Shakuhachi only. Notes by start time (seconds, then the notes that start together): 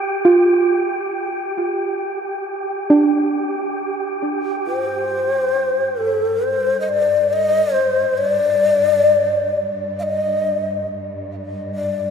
4.67 C5
6.00 A4
6.44 C5
6.81 D#5
6.89 D5
7.33 D#5
7.74 C5
8.18 D5
9.99 D#5 F5
11.75 D5